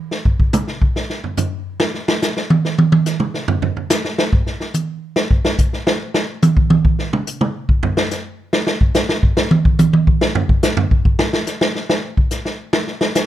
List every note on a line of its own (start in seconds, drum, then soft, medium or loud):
0.11 snare medium
0.25 kick medium
0.40 kick medium
0.53 hi-hat pedal medium
0.53 mid tom medium
0.67 snare soft
0.82 kick medium
0.96 snare soft
1.10 snare soft
1.24 floor tom soft
1.37 floor tom medium
1.37 hi-hat pedal medium
1.80 snare medium
1.94 snare soft
2.08 snare medium
2.22 snare medium
2.22 hi-hat pedal medium
2.37 snare medium
2.50 high tom medium
2.65 snare soft
2.78 high tom medium
2.92 high tom medium
3.06 snare soft
3.06 hi-hat pedal soft
3.20 mid tom medium
3.34 snare soft
3.48 floor tom loud
3.62 floor tom medium
3.77 floor tom soft
3.90 snare loud
3.90 hi-hat pedal medium
4.05 snare medium
4.18 snare medium
4.33 kick medium
4.46 snare soft
4.60 snare soft
4.74 hi-hat pedal medium
4.74 high tom soft
5.16 snare medium
5.31 kick medium
5.45 snare medium
5.58 kick medium
5.58 hi-hat pedal medium
5.73 snare soft
5.87 snare loud
6.14 snare medium
6.42 hi-hat pedal soft
6.42 high tom medium
6.57 kick medium
6.70 high tom medium
6.85 kick medium
6.99 snare soft
7.13 mid tom medium
7.27 hi-hat pedal medium
7.41 mid tom loud
7.69 kick medium
7.83 floor tom medium
7.97 snare medium
8.11 snare soft
8.11 hi-hat pedal medium
8.53 snare loud
8.67 snare medium
8.81 kick medium
8.94 snare loud
8.94 hi-hat pedal medium
9.09 snare medium
9.23 kick medium
9.37 snare loud
9.51 high tom medium
9.65 kick medium
9.79 hi-hat pedal medium
9.79 high tom medium
9.93 high tom medium
10.07 kick medium
10.21 snare loud
10.35 floor tom medium
10.49 kick medium
10.63 snare loud
10.63 hi-hat pedal medium
10.77 floor tom loud
10.91 kick medium
11.05 kick medium
11.19 snare medium
11.33 snare medium
11.47 snare soft
11.47 hi-hat pedal medium
11.61 snare loud
11.75 snare soft
11.89 snare medium
12.17 kick medium
12.31 snare soft
12.31 hi-hat pedal medium
12.45 snare soft
12.73 snare medium
12.87 snare soft
13.01 snare medium
13.15 snare medium
13.15 hi-hat pedal medium